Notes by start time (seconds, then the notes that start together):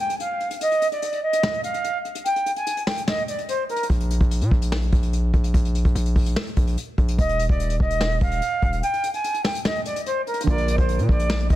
Already playing: downlifter
0.00 G5
0.10 closed hi-hat
0.20 F5, closed hi-hat
0.40 closed hi-hat
0.51 closed hi-hat
0.61 D#5, closed hi-hat
0.72 closed hi-hat
0.82 closed hi-hat
0.92 D5, closed hi-hat
1.02 closed hi-hat
1.12 closed hi-hat
1.23 D#5
1.33 closed hi-hat
1.43 snare
1.54 closed hi-hat
1.64 F5, closed hi-hat
1.74 closed hi-hat
1.84 closed hi-hat
2.05 closed hi-hat
2.15 closed hi-hat
2.25 G5, closed hi-hat
2.36 closed hi-hat
2.46 closed hi-hat
2.56 G#5, closed hi-hat
2.67 closed hi-hat
2.77 closed hi-hat
2.87 G5, snare, open hi-hat
2.97 closed hi-hat
3.08 D#5, snare
3.18 closed hi-hat
3.28 D5, closed hi-hat
3.38 closed hi-hat
3.49 C5, closed hi-hat
3.69 A#4, closed hi-hat
3.76 closed hi-hat
3.83 closed hi-hat
3.90 A#1, kick, closed hi-hat
4.00 closed hi-hat
4.10 closed hi-hat
4.21 A#1, kick, closed hi-hat
4.31 closed hi-hat
4.41 A#2, closed hi-hat
4.51 A#1, kick
4.62 closed hi-hat
4.72 snare
4.83 closed hi-hat
4.92 A#1, kick, closed hi-hat
5.03 closed hi-hat
5.13 closed hi-hat
5.34 A#1, kick, closed hi-hat
5.44 closed hi-hat
5.54 A#1, kick, closed hi-hat
5.65 closed hi-hat
5.75 closed hi-hat
5.85 A#1, kick, closed hi-hat
5.95 A#1, closed hi-hat
6.06 closed hi-hat
6.16 A#1, kick, open hi-hat
6.26 closed hi-hat
6.36 snare
6.47 closed hi-hat
6.57 A#1, kick, closed hi-hat
6.67 closed hi-hat
6.77 closed hi-hat
6.98 A#1, kick, closed hi-hat
7.08 closed hi-hat
7.18 D#1 D#5, kick, closed hi-hat
7.29 closed hi-hat
7.39 closed hi-hat
7.49 D#1 D5, kick, closed hi-hat
7.60 closed hi-hat
7.70 closed hi-hat
7.80 D#1 D#5, kick
7.90 closed hi-hat
8.01 snare
8.11 closed hi-hat
8.21 D#1 F5, kick, closed hi-hat
8.31 closed hi-hat
8.42 closed hi-hat
8.62 D#1, kick, closed hi-hat
8.73 closed hi-hat
8.83 G5, closed hi-hat
8.93 closed hi-hat
9.03 closed hi-hat
9.14 G#5, closed hi-hat
9.24 closed hi-hat
9.34 closed hi-hat
9.44 G5, snare, open hi-hat
9.55 closed hi-hat
9.65 D#5, snare
9.76 closed hi-hat
9.85 D5, closed hi-hat
9.96 closed hi-hat
10.06 C5, closed hi-hat
10.27 A#4, closed hi-hat
10.34 closed hi-hat
10.40 D3, closed hi-hat
10.46 A#1 A#3 F4 D5, kick
10.52 A#4
10.58 closed hi-hat
10.68 closed hi-hat
10.78 A#1 C5, kick, closed hi-hat
10.89 closed hi-hat
10.99 A#2, closed hi-hat
11.09 A#1 D5, kick
11.19 closed hi-hat
11.30 snare
11.40 closed hi-hat
11.50 A#1 D#5, kick, closed hi-hat